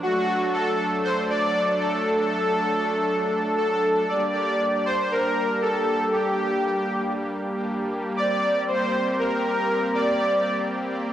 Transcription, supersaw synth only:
0.03 0.55 F#4 loud
0.53 1.06 A4 loud
1.04 1.16 C5 loud
1.30 1.82 D5 loud
1.80 3.57 A4 loud
3.58 4.11 A4 loud
4.09 4.88 D5 loud
4.86 5.12 C5 loud
5.11 5.64 A#4 loud
5.62 6.14 A4 loud
6.13 7.61 G4 loud
8.17 8.69 D5 loud
8.68 9.20 C5 loud
9.19 9.97 A#4 loud
9.95 10.92 D5 loud

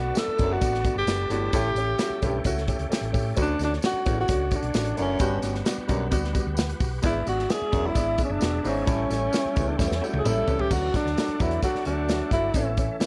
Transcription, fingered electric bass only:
0.00 0.10 B1 loud
0.28 muted fingered electric bass stroke soft
0.39 0.56 F#1 medium
0.62 0.87 A1 medium
0.95 1.04 G1 medium
1.06 1.24 F#1 medium
1.30 1.47 G1 medium
1.53 1.70 A1 medium
1.75 1.93 A1 medium
2.10 muted fingered electric bass stroke soft
2.22 2.40 B1 medium
2.45 2.71 C#2 loud
2.79 2.88 C#2 medium
2.90 muted fingered electric bass stroke soft
3.01 3.10 A1 medium
3.14 3.31 A2 medium
3.37 3.54 D2 medium
3.59 3.77 D2 medium
3.93 muted fingered electric bass stroke soft
4.06 4.23 A1 medium
4.29 4.54 C#2 medium
4.63 4.71 B1 medium
4.74 4.92 A1 medium
4.99 5.15 F#1 medium
5.20 5.37 G1 loud
5.43 5.60 G1 medium
5.78 muted fingered electric bass stroke soft
5.89 6.12 B1 medium
6.12 6.38 D2 loud
6.47 6.72 D2 medium
6.80 6.98 B1 medium
7.03 7.21 G#1 loud
7.27 7.44 G#1 loud
7.61 muted fingered electric bass stroke soft
7.73 7.90 E1 medium
7.95 8.21 G#1 medium
8.30 8.39 F#1 medium
8.42 8.59 E1 medium
8.65 8.82 G#1 medium
8.88 9.05 A1 loud
9.10 9.27 A1 medium
9.45 muted fingered electric bass stroke soft
9.57 9.74 C#2 medium
9.79 9.87 E2 medium
9.91 9.99 E2 medium
10.14 10.22 C#2 medium
10.25 10.42 A1 medium
10.48 10.56 C#2 medium
10.71 10.88 D2 medium
11.05 11.14 D2 medium
11.28 muted fingered electric bass stroke soft
11.40 11.57 E2 medium
11.75 muted fingered electric bass stroke soft
11.86 12.20 D2 medium
12.31 12.49 G1 medium
12.54 12.88 A1 medium

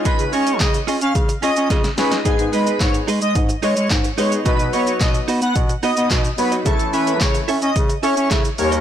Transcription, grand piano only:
0.00 0.66 G#3 medium
0.00 0.66 C#4 medium
0.00 0.66 D#4 medium
0.00 0.66 F4 medium
0.00 0.66 G#4 medium
1.98 2.17 G#3 medium
1.98 2.17 C#4 medium
1.98 2.17 D#4 medium
1.98 2.18 F4 medium
1.98 2.18 G#4 medium
2.25 3.04 G#3 medium
2.25 3.04 B3 medium
2.25 3.04 D#4 medium
2.25 3.04 G#4 medium
2.25 3.04 B4 medium
4.18 4.38 G#3 medium
4.18 4.38 B3 medium
4.18 4.38 D#4 medium
4.18 4.38 G#4 medium
4.18 4.38 B4 medium
4.45 5.24 F#3 medium
4.45 5.24 B3 medium
4.45 5.24 D#4 medium
4.45 5.24 F#4 medium
4.45 5.24 B4 medium
6.38 6.58 F#3 medium
6.38 6.58 B3 medium
6.38 6.58 D#4 medium
6.38 6.58 F#4 medium
6.38 6.58 C#5 medium
6.66 7.44 E3 medium
6.66 7.44 A3 medium
6.66 7.44 C#4 medium
6.66 7.44 E4 medium
6.66 7.44 A4 medium
8.58 8.80 G3 medium
8.58 8.80 A#3 medium
8.58 8.80 D#4 medium
8.58 8.80 G4 medium
8.58 8.80 A#4 medium

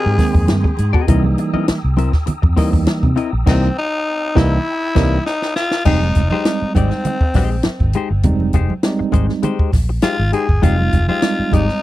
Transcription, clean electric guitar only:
0.00 0.16 C4 medium
0.00 0.17 G4 medium
0.00 0.17 A#4 medium
0.00 0.17 D#5 medium
0.19 muted clean electric guitar stroke soft
0.34 muted clean electric guitar stroke soft
0.49 muted clean electric guitar stroke soft
0.64 muted clean electric guitar stroke soft
0.93 1.07 C4 medium
0.93 1.08 G4 medium
0.93 1.07 A#4 medium
0.93 1.08 D#5 medium
1.08 1.26 C4 medium
1.08 1.25 E4 medium
1.08 1.25 A#4 loud
1.08 1.24 D#5 medium
1.25 muted clean electric guitar stroke medium
1.38 muted clean electric guitar stroke soft
1.54 1.67 C4 soft
1.54 1.67 E4 medium
1.54 1.67 A#4 medium
1.54 1.66 D#5 medium
1.68 muted clean electric guitar stroke soft
1.97 2.12 C4 medium
1.97 2.12 E4 medium
1.97 2.12 A#4 medium
1.97 2.12 E5 medium
2.13 muted clean electric guitar stroke soft
2.26 muted clean electric guitar stroke soft
2.42 muted clean electric guitar stroke soft
2.56 2.75 C4 medium
2.56 2.73 E4 medium
2.56 2.72 A#4 loud
2.56 2.71 D#5 medium
2.72 muted clean electric guitar stroke soft
2.87 muted clean electric guitar stroke soft
3.16 3.31 C4 medium
3.16 3.31 E4 medium
3.16 3.32 A#4 medium
3.16 3.31 D#5 medium
3.33 muted clean electric guitar stroke soft
3.46 3.67 C4 loud
3.46 3.68 E4 loud
3.46 3.68 A#4 loud
3.46 3.69 D#5 loud
4.36 4.57 C4 loud
4.36 4.57 E4 loud
4.36 4.57 A#4 loud
4.36 4.58 D#5 loud
4.95 5.16 C4 loud
4.95 5.17 E4 loud
4.95 5.17 A#4 loud
4.95 5.17 D#5 loud
5.85 6.04 G#3 medium
5.85 6.02 D#4 medium
5.85 6.01 G4 medium
5.85 6.01 C5 loud
6.02 muted clean electric guitar stroke soft
6.16 muted clean electric guitar stroke soft
6.32 6.45 G#3 medium
6.32 6.45 D#4 medium
6.32 6.45 G4 medium
6.32 6.45 C5 medium
6.76 6.90 G#3 medium
6.76 6.90 D#4 medium
6.76 6.90 G4 medium
6.76 6.91 D5 medium
6.92 muted clean electric guitar stroke medium
7.06 muted clean electric guitar stroke soft
7.22 muted clean electric guitar stroke soft
7.35 7.55 G#3 medium
7.35 7.52 D#4 medium
7.35 7.51 G4 medium
7.35 7.51 C5 medium
7.52 muted clean electric guitar stroke soft
7.66 muted clean electric guitar stroke soft
7.95 8.09 G#3 medium
7.95 8.10 D#4 medium
7.95 8.10 G4 medium
7.95 8.10 C5 medium
8.54 8.72 G#3 medium
8.54 8.73 D#4 medium
8.54 8.73 G4 medium
8.54 8.73 C5 medium
8.84 muted clean electric guitar stroke soft
8.99 muted clean electric guitar stroke soft
9.12 9.31 G#3 medium
9.12 9.29 D#4 medium
9.12 9.28 G4 medium
9.12 9.27 C5 medium
9.29 muted clean electric guitar stroke soft
9.43 9.71 G#3 medium
9.43 9.71 D#4 medium
9.43 9.71 G4 medium
9.43 9.72 C5 medium
9.73 muted clean electric guitar stroke soft
9.89 muted clean electric guitar stroke soft
10.03 10.21 G#3 medium
10.03 10.19 D#4 loud
10.03 10.18 G4 loud
10.03 10.17 C5 loud
10.18 muted clean electric guitar stroke soft
10.32 10.47 G#3 medium
10.32 10.48 D#4 medium
10.32 10.48 G4 medium
10.32 10.47 C5 medium
10.49 muted clean electric guitar stroke soft
10.62 10.81 G#3 medium
10.62 10.78 D#4 loud
10.62 10.78 G4 loud
10.62 10.77 C5 loud
10.79 muted clean electric guitar stroke medium
10.93 muted clean electric guitar stroke soft
11.09 11.22 G#3 soft
11.09 11.22 D#4 medium
11.09 11.22 G4 medium
11.09 11.22 C5 medium
11.53 11.67 G#3 medium
11.53 11.68 D#4 medium
11.53 11.68 G4 medium
11.53 11.68 D5 medium
11.69 muted clean electric guitar stroke soft

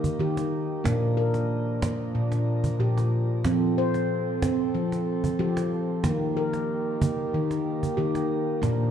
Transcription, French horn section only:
0.00 0.82 D#3 medium
0.00 0.82 A#3 medium
0.00 0.82 G4 medium
0.85 6.00 F3 medium
0.85 3.42 A#3 medium
0.85 3.42 D4 medium
3.46 6.02 C4 medium
3.46 6.02 A4 medium
6.05 8.60 D#3 medium
6.05 8.91 A#3 medium
6.05 8.61 G4 medium
8.63 8.91 F3 medium
8.63 8.91 D4 medium

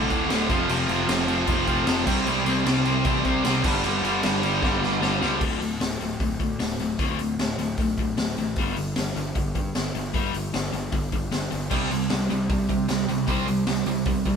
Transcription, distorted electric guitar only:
0.10 0.28 D2 medium
0.10 0.29 A2 medium
0.10 0.30 D3 loud
0.29 0.48 D2 loud
0.29 0.48 A2 loud
0.29 0.49 D3 loud
0.50 0.68 F2 medium
0.50 0.69 C3 medium
0.50 0.69 F3 loud
0.69 0.89 F2 loud
0.69 0.90 C3 loud
0.69 0.90 F3 loud
0.90 1.07 F2 medium
0.90 1.08 C3 medium
0.90 1.09 F3 loud
1.08 1.27 F2 medium
1.08 1.27 C3 loud
1.08 1.28 F3 loud
1.28 1.46 F2 medium
1.28 1.47 C3 loud
1.28 1.47 F3 loud
1.47 1.65 F2 loud
1.47 1.66 C3 loud
1.47 1.67 F3 loud
1.66 1.85 F2 medium
1.66 1.86 C3 medium
1.66 1.86 F3 medium
1.86 2.05 F2 loud
1.86 2.04 C3 loud
1.86 2.06 F3 loud
2.05 2.24 C3 loud
2.05 2.26 G3 loud
2.05 2.26 C4 loud
2.25 2.43 C3 loud
2.25 2.44 G3 loud
2.25 2.44 C4 loud
2.44 2.63 C3 medium
2.44 2.64 G3 medium
2.44 2.64 C4 medium
2.64 2.82 C3 loud
2.64 2.83 G3 medium
2.64 2.83 C4 loud
2.83 3.03 C3 loud
2.83 3.03 G3 loud
2.83 3.04 C4 loud
3.04 3.23 C3 loud
3.04 3.24 G3 loud
3.04 3.24 C4 loud
3.24 3.42 C3 medium
3.24 3.43 G3 medium
3.24 3.44 C4 medium
3.43 3.62 C3 loud
3.43 3.63 G3 loud
3.43 3.63 C4 loud
3.64 3.82 G2 medium
3.64 3.83 D3 medium
3.64 3.84 G3 loud
3.84 4.02 G2 medium
3.84 4.03 D3 loud
3.84 4.04 G3 loud
4.03 4.22 G2 medium
4.03 4.22 D3 medium
4.03 4.23 G3 medium
4.23 4.41 G2 loud
4.23 4.41 D3 medium
4.23 4.42 G3 loud
4.42 4.60 G2 medium
4.42 4.61 D3 loud
4.42 4.61 G3 loud
4.61 4.80 G2 loud
4.61 4.80 D3 loud
4.61 4.81 G3 loud
4.81 5.01 G2 medium
4.81 5.01 D3 medium
4.81 5.01 G3 medium
5.02 5.20 G2 loud
5.02 5.22 D3 loud
5.02 5.22 G3 loud
5.22 5.40 G2 medium
5.22 5.41 D3 medium
5.22 5.41 G3 medium
11.71 11.89 C3 medium
11.71 11.90 G3 medium
11.71 11.90 C4 loud
11.90 12.08 C3 medium
11.90 12.09 G3 medium
12.11 12.29 C3 medium
12.11 12.29 G3 medium
12.30 12.48 C3 medium
12.30 12.48 G3 medium
12.50 12.67 C3 medium
12.50 12.68 G3 medium
12.69 12.87 C3 medium
12.69 12.88 G3 medium
12.88 13.06 C3 medium
12.88 13.07 G3 medium
13.09 13.26 C3 medium
13.09 13.27 G3 medium
13.28 13.46 C3 medium
13.28 13.46 G3 medium
13.28 13.47 C4 loud
13.47 13.65 C3 medium
13.47 13.65 G3 medium
13.67 13.85 C3 medium
13.67 13.85 G3 medium
13.86 14.04 C3 medium
13.86 14.05 G3 medium
14.06 14.24 C3 medium
14.06 14.24 G3 medium
14.25 14.36 C3 medium
14.25 14.36 G3 medium

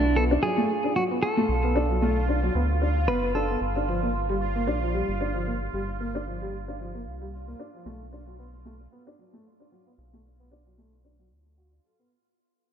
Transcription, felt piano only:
0.16 0.29 B3 medium
0.31 0.38 D4 loud
0.43 0.51 F#3 medium
0.58 0.68 A3 loud
0.84 0.91 D4 medium
0.96 1.04 F#3 medium
1.11 1.15 B3 medium
1.37 1.41 A3 loud
1.64 1.74 B3 medium
1.76 1.84 D4 loud
1.90 1.97 F#3 medium
2.02 2.15 A3 loud
2.29 2.37 D4 medium
2.43 2.50 F#3 medium
2.55 2.60 B3 medium
2.82 2.87 D4 medium
3.08 3.17 B3 loud
3.23 3.27 B3 medium
3.35 3.43 D4 medium
3.50 3.56 B3 medium
3.76 3.83 D4 medium
3.88 3.96 F3 medium
4.03 4.07 A#3 medium
4.29 4.33 G3 loud
4.56 4.66 A#3 medium
4.67 4.76 D4 medium
4.82 4.89 F3 medium
4.94 5.07 G3 medium
5.21 5.29 D4 medium
5.35 5.42 F3 medium
5.47 5.52 A#3 medium
5.74 5.79 G3 medium
6.00 6.13 A#3 medium
6.15 6.22 D4 loud
6.27 6.35 F3 medium
6.42 6.52 G3 loud
6.68 6.75 D4 medium
6.80 6.88 F3 medium
6.95 6.99 A#3 medium
7.21 7.25 G3 loud
7.48 7.58 A#3 medium
7.59 7.68 D4 medium
7.74 7.81 F3 medium
7.86 7.99 A3 loud
8.12 8.21 D4 medium
8.27 8.34 F#3 medium
8.39 8.44 B3 medium
8.65 8.71 A3 medium
8.92 9.05 B3 medium
9.07 9.14 D4 medium
9.19 9.27 F#3 medium
9.33 9.44 A3 medium
9.60 9.67 D4 medium
9.72 9.80 F#3 medium
9.87 9.91 B3 medium
10.13 10.17 A3 medium
10.40 10.50 B3 medium
10.51 10.60 D4 medium
10.66 10.73 F#3 medium
10.78 10.91 A3 medium
11.04 11.13 D4 medium
11.19 11.26 F#3 medium
11.58 11.71 F#4 medium
11.84 11.93 A4 medium
11.99 12.09 B3 medium

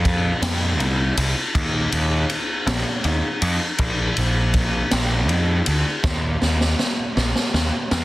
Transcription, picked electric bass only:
0.00 0.31 F2 medium
0.42 0.79 F2 loud
0.79 1.11 C2 medium
1.17 1.33 C2 loud
1.55 1.86 D#2 loud
1.93 2.24 D#2 medium
2.67 2.83 A#1 loud
3.05 3.20 D#2 medium
3.42 3.58 F2 loud
3.79 4.11 A#1 loud
4.18 4.81 A#1 medium
4.92 5.29 A#1 loud
5.29 5.61 F2 loud
5.67 5.83 D2 medium
6.04 6.36 D#2 loud
6.42 6.74 D#2 medium
7.17 7.33 A#1 loud
7.54 7.70 D#2 medium
7.92 8.04 E2 loud

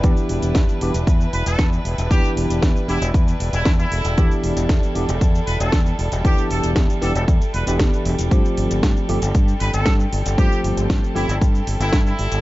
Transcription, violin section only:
0.00 12.41 G3 medium
0.00 8.28 D4 medium
0.00 8.27 E4 medium
0.00 3.88 B4 medium
3.92 8.28 A4 medium
8.31 12.41 C4 medium
8.31 12.41 G4 medium
8.31 12.41 A4 medium

